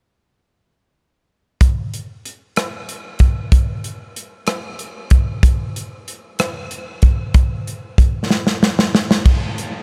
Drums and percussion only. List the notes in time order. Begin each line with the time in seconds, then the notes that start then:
1.61 kick, closed hi-hat
1.94 closed hi-hat
2.25 closed hi-hat
2.56 cross-stick, closed hi-hat
2.89 closed hi-hat
3.19 kick, closed hi-hat
3.52 kick, closed hi-hat
3.84 closed hi-hat
4.16 closed hi-hat
4.47 cross-stick, closed hi-hat
4.79 closed hi-hat
5.10 kick, closed hi-hat
5.43 kick, closed hi-hat
5.76 closed hi-hat
6.08 closed hi-hat
6.39 cross-stick, closed hi-hat
6.71 closed hi-hat
7.02 kick, closed hi-hat
7.34 kick, closed hi-hat
7.67 closed hi-hat
7.98 kick, closed hi-hat
8.30 snare
8.47 snare
8.63 snare
8.79 snare
8.95 snare
9.11 snare
9.25 kick, crash
9.58 closed hi-hat